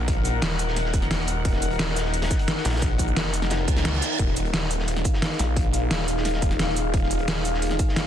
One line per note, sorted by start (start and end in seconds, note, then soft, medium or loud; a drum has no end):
0.00 0.41 A#1 loud
0.00 8.07 D#4 medium
0.00 4.15 A#4 medium
0.00 4.17 F#5 medium
0.08 kick loud
0.08 closed hi-hat medium
0.25 closed hi-hat medium
0.25 cabasa medium
0.42 0.92 D#1 loud
0.42 snare loud
0.42 closed hi-hat medium
0.51 snare medium
0.59 closed hi-hat medium
0.59 cabasa medium
0.68 snare medium
0.76 snare soft
0.76 closed hi-hat medium
0.85 snare soft
0.94 1.09 D#1 loud
0.94 kick loud
0.94 closed hi-hat medium
0.94 cabasa medium
1.02 snare soft
1.11 1.44 D#1 loud
1.11 snare loud
1.11 closed hi-hat medium
1.27 closed hi-hat medium
1.27 closed hi-hat loud
1.27 cabasa medium
1.45 1.78 D#1 loud
1.45 kick loud
1.45 closed hi-hat medium
1.53 snare soft
1.62 closed hi-hat medium
1.62 closed hi-hat loud
1.62 cabasa medium
1.71 closed hi-hat medium
1.79 2.29 D#1 loud
1.79 snare loud
1.79 closed hi-hat medium
1.88 snare soft
1.96 snare medium
1.96 closed hi-hat medium
1.96 cabasa medium
2.05 snare medium
2.14 closed hi-hat medium
2.22 snare loud
2.22 snare soft
2.22 closed hi-hat medium
2.31 kick loud
2.31 snare medium
2.31 closed hi-hat medium
2.31 cabasa medium
2.39 closed hi-hat medium
2.48 snare loud
2.48 closed hi-hat medium
2.57 snare soft
2.65 3.15 A#1 loud
2.65 snare medium
2.65 closed hi-hat medium
2.65 closed hi-hat loud
2.65 cabasa medium
2.69 snare medium
2.69 closed hi-hat medium
2.73 snare medium
2.73 closed hi-hat medium
2.77 snare medium
2.77 closed hi-hat medium
2.82 kick loud
2.82 closed hi-hat medium
2.98 kick medium
2.98 closed hi-hat medium
2.98 closed hi-hat loud
2.98 cabasa medium
3.08 cabasa soft
3.16 3.67 F1 loud
3.16 snare loud
3.16 closed hi-hat medium
3.26 snare medium
3.33 closed hi-hat medium
3.33 closed hi-hat loud
3.33 cabasa medium
3.42 snare medium
3.42 snare soft
3.50 snare loud
3.50 snare soft
3.50 closed hi-hat medium
3.50 reverse cymbal medium
3.50 cabasa soft
3.68 4.01 C#2 loud
3.68 kick loud
3.68 closed hi-hat medium
3.68 closed hi-hat loud
3.68 cabasa medium
3.76 snare loud
3.76 snare soft
3.76 closed hi-hat medium
3.85 snare loud
3.85 closed hi-hat medium
3.94 closed hi-hat medium
4.01 snare loud
4.01 closed hi-hat medium
4.01 closed hi-hat loud
4.01 cabasa medium
4.19 4.52 D#1 medium
4.19 8.07 G#4 medium
4.19 8.07 F5 medium
4.19 kick loud
4.19 closed hi-hat medium
4.28 snare soft
4.37 closed hi-hat loud
4.37 closed hi-hat medium
4.37 cabasa medium
4.45 closed hi-hat soft
4.54 5.04 D#1 loud
4.54 snare loud
4.54 closed hi-hat medium
4.62 snare soft
4.71 closed hi-hat medium
4.71 cabasa medium
4.79 snare medium
4.88 closed hi-hat medium
4.96 snare soft
5.04 kick loud
5.04 closed hi-hat medium
5.04 closed hi-hat loud
5.04 cabasa medium
5.14 snare medium
5.22 snare loud
5.22 closed hi-hat medium
5.39 5.89 A#1 loud
5.39 snare soft
5.39 snare medium
5.39 closed hi-hat medium
5.39 closed hi-hat loud
5.39 cabasa medium
5.56 kick loud
5.56 closed hi-hat medium
5.56 closed hi-hat loud
5.74 closed hi-hat loud
5.74 closed hi-hat medium
5.74 cabasa medium
5.91 6.41 D#1 loud
5.91 snare loud
5.91 closed hi-hat medium
5.99 snare medium
6.08 closed hi-hat loud
6.08 closed hi-hat medium
6.08 cabasa medium
6.17 snare medium
6.25 snare soft
6.25 closed hi-hat medium
6.33 snare soft
6.42 6.58 D#1 loud
6.42 kick loud
6.42 closed hi-hat medium
6.42 cabasa medium
6.51 snare soft
6.59 6.92 D#1 loud
6.59 snare loud
6.59 closed hi-hat medium
6.77 closed hi-hat loud
6.77 closed hi-hat medium
6.77 cabasa medium
6.94 7.27 D#1 loud
6.94 kick loud
6.94 closed hi-hat medium
7.03 snare soft
7.11 closed hi-hat loud
7.11 closed hi-hat medium
7.11 cabasa medium
7.19 closed hi-hat soft
7.28 7.78 D#1 loud
7.28 snare loud
7.28 closed hi-hat medium
7.36 snare medium
7.45 closed hi-hat medium
7.45 cabasa medium
7.54 snare soft
7.62 closed hi-hat medium
7.62 closed hi-hat loud
7.71 snare soft
7.79 kick loud
7.79 closed hi-hat medium
7.79 cabasa medium
7.89 snare medium
7.96 snare loud
7.96 closed hi-hat medium